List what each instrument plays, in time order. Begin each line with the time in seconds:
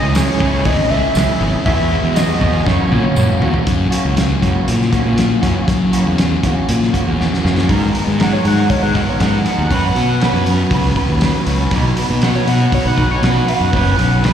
Already playing: overdriven electric guitar C#3 E3 A3 C#4 E4, clean electric guitar G#4, analog synth lead D#5
0.02 fingered electric bass C#2
0.14 overdriven electric guitar C#3 E3 A3 C#4 E4, clean electric guitar G#4, analog synth lead C#5, snare, open hi-hat, tambourine
0.40 fingered electric bass C#2, overdriven electric guitar C#3 E3 A3 C#4 E4, clean electric guitar G#4, kick
0.65 fingered electric bass G#1, overdriven electric guitar C#3 E3 A3 C#4 E4, clean electric guitar G#4, analog synth lead D#5, kick, open hi-hat
0.83 analog synth lead D#5
0.90 fingered electric bass C#2, overdriven electric guitar C#3 E3 A3 C#4 E4, clean electric guitar G#4, analog synth lead E5
1.15 fingered electric bass C#2, overdriven electric guitar C#3 E3 A3 C#4 E4, clean electric guitar G#4, snare, open hi-hat, tambourine
1.40 fingered electric bass G#1, overdriven electric guitar C#3 E3 A3 C#4 E4, clean electric guitar G#4
1.65 overdriven electric guitar E2 B2 E3 G#3 B3 G#4, fingered electric bass E2, clean electric guitar F#3 F#4, analog synth lead E5, kick, open hi-hat
1.90 overdriven electric guitar E2 B2 E3 G#3 B3 G#4, clean electric guitar F#3 F#4
2.03 fingered electric bass E2
2.16 overdriven electric guitar E2 B2 E3 G#3 B3 G#4, clean electric guitar F#3 F#4, analog synth lead D#5, snare, open hi-hat, tambourine
2.40 overdriven electric guitar E2 B2 E3 G#3 B3 G#4, fingered electric bass E2, clean electric guitar F#3 F#4, kick
2.65 overdriven electric guitar F#2 C#3 E3 A#3 C#4 F#4, fingered electric bass F#2, analog synth lead C#5, kick, snare
2.90 overdriven electric guitar F#2 C#3 E3 A#3 C#4 F#4, fingered electric bass A#2, high tom
3.16 overdriven electric guitar F#2 C#3 E3 A#3 C#4 F#4, fingered electric bass F#2, mid tom, tambourine
3.29 mid tom
3.41 fingered electric bass E2, overdriven electric guitar F#2 C#3 E3 A#3 C#4 F#4, floor tom
3.54 floor tom
3.65 overdriven electric guitar F#2 C#3 E3 A#3 C#4 F#4, fingered electric bass F#2, kick, closed hi-hat
3.90 overdriven electric guitar E3 A#3 C#4 F#4, closed hi-hat
4.05 fingered electric bass C#2
4.15 overdriven electric guitar F#2 C#3 E3 A#3 C#4 F#4, snare, closed hi-hat
4.42 fingered electric bass F#2, clean electric guitar E3 A#3 C#4 F#4, kick, closed hi-hat
4.68 fingered electric bass A#2, closed hi-hat
4.82 snare
4.92 overdriven electric guitar E3 A#3 C#4 F#4, kick, closed hi-hat
5.06 fingered electric bass A#2
5.16 overdriven electric guitar E3 A#3 C#4 F#4, snare, closed hi-hat
5.42 fingered electric bass F#2, overdriven electric guitar E3 A#3 C#4 F#4, kick, closed hi-hat
5.67 overdriven electric guitar F#2 C#3 E3 A#3 C#4 F#4, fingered electric bass F#3, kick, closed hi-hat
5.92 overdriven electric guitar E3 A#3 C#4 F#4, closed hi-hat
6.06 fingered electric bass E2
6.18 overdriven electric guitar F#2 C#3 E3 A#3 C#4 F#4, snare, closed hi-hat
6.43 fingered electric bass E2, clean electric guitar E3 A#3 C#4 F#4, kick, closed hi-hat
6.69 fingered electric bass A#2, closed hi-hat
6.83 snare
6.93 overdriven electric guitar E3 A#3 C#4 F#4, kick, closed hi-hat
7.06 fingered electric bass E2
7.18 overdriven electric guitar E3 A#3 C#4 F#4, snare
7.34 snare
7.43 fingered electric bass F#2, overdriven electric guitar E3 A#3 C#4 F#4, snare
7.58 snare
7.68 overdriven electric guitar G#2 D#3 G#3 B3 D#4 G#4, fingered electric bass G#2, clean electric guitar A#4, kick, open hi-hat
7.92 overdriven electric guitar G#3 B3 D#4 G#4, clean electric guitar A#4, open hi-hat
8.07 fingered electric bass G#2
8.17 clean electric guitar G#2 D#3 A#4, overdriven electric guitar G#3 B3 D#4 G#4, snare, open hi-hat
8.23 analog synth lead F#5
8.33 analog synth lead C#5
8.43 fingered electric bass G#2, overdriven electric guitar G#2 D#3 G#3 B3 D#4 G#4, clean electric guitar A#4, open hi-hat
8.47 analog synth lead F#5
8.59 analog synth lead F#5
8.68 overdriven electric guitar G#3 B3 D#4 G#4, clean electric guitar A#4, analog synth lead C#5, kick, open hi-hat
8.83 fingered electric bass G#2, analog synth lead F#5
8.94 overdriven electric guitar G#2 D#3 G#3 B3 D#4 G#4, clean electric guitar A#4, analog synth lead F#5, kick, open hi-hat
9.10 analog synth lead C#5
9.19 fingered electric bass G#2, overdriven electric guitar G#3 B3 D#4 G#4, clean electric guitar A#4, analog synth lead F#5, snare, open hi-hat
9.44 overdriven electric guitar G#3 B3 D#4 G#4, clean electric guitar A#4, analog synth lead F#5, open hi-hat
9.58 fingered electric bass D#2
9.69 fingered electric bass F#2, overdriven electric guitar F#3 B3 C#4 F#4, kick, open hi-hat
9.74 clean electric guitar B4
9.94 fingered electric bass B2, overdriven electric guitar B3 C#4 F#4, clean electric guitar B4, open hi-hat
10.20 overdriven electric guitar F#3 B3 C#4 F#4, snare, open hi-hat
10.24 clean electric guitar B4
10.33 fingered electric bass F#2
10.45 overdriven electric guitar F#3 B3 C#4 F#4, clean electric guitar B4, open hi-hat
10.70 fingered electric bass C#2, overdriven electric guitar F#3 B3 C#4 F#4, clean electric guitar B4, kick, open hi-hat
10.95 overdriven electric guitar F#3 B3 C#4 F#4, clean electric guitar B4, kick, open hi-hat
11.09 fingered electric bass D#2
11.21 overdriven electric guitar F#3 B3 C#4 F#4, clean electric guitar B4, snare, open hi-hat
11.45 fingered electric bass C#2, overdriven electric guitar B3 C#4 F#4, clean electric guitar B4, open hi-hat
11.71 fingered electric bass B1, overdriven electric guitar B2 F#3 B3 D#4 F#4, clean electric guitar D#3 B4, kick, open hi-hat
11.96 clean electric guitar F#3 B4, overdriven electric guitar B3 D#4 F#4, open hi-hat
12.10 fingered electric bass B2
12.21 clean electric guitar B2 D#3 B4, overdriven electric guitar F#3 B3 D#4 F#4, analog synth lead F#5, snare, open hi-hat
12.36 analog synth lead C#5
12.45 fingered electric bass B2, overdriven electric guitar B2 F#3 B3 D#4 F#4, clean electric guitar B4, analog synth lead F#5, open hi-hat
12.62 analog synth lead F#5
12.71 overdriven electric guitar F#3 B3 D#4 F#4, clean electric guitar B4, analog synth lead C#5, kick, open hi-hat
12.85 fingered electric bass B1, analog synth lead F#5
12.96 overdriven electric guitar B2 F#3 B3 D#4 F#4, clean electric guitar D#3 B4, analog synth lead F#5, kick, open hi-hat
13.11 analog synth lead C#5
13.22 fingered electric bass B2, overdriven electric guitar F#3 B3 D#4 F#4, clean electric guitar B4, analog synth lead F#5, snare, open hi-hat
13.47 clean electric guitar F#3 B4, overdriven electric guitar B3 D#4 F#4, analog synth lead F#5, open hi-hat
13.61 fingered electric bass F#2
13.72 fingered electric bass F#1, overdriven electric guitar F#2 C#3 F#3 B3 C#4 F#4, clean electric guitar B4, kick, open hi-hat
13.96 fingered electric bass B1, overdriven electric guitar F#3 B3 C#4 F#4, clean electric guitar B4, open hi-hat
14.22 overdriven electric guitar F#3 B3 C#4 F#4, clean electric guitar B4, snare, open hi-hat